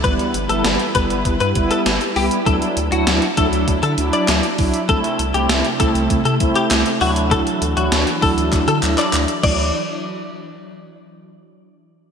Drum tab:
CC |----------------|----------------|----------------|--------------x-|
HH |xxxxxxxxxxxxxxox|xxxxxxxxxxxxxxox|xxxxxxxxxxxxxxox|xxxxxxoxxxxxxx--|
CP |----------------|------------x---|------------x---|--------x-xxx---|
SD |----o-------o---|----o-------o---|----o-------o---|----o-----------|
BD |o-----o-o-o-----|o-----o-o-----o-|o-----o-o-o-----|o-----o-o-----o-|

CC |----------------|
HH |----------------|
CP |----------------|
SD |----------------|
BD |----------------|